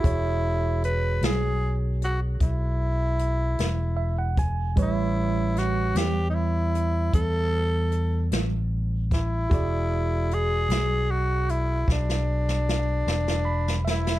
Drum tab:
HH |x---x-x---x-x---x-x---x-|x---x-x---x-x---x-x---x-|x---x-x---x-------------|
SD |------o-----------o-----|----o-o-----------o---o-|------o-----oo-oo-oo-ooo|
BD |o-----------o---------o-|o-----------o---------o-|o-----------o-----------|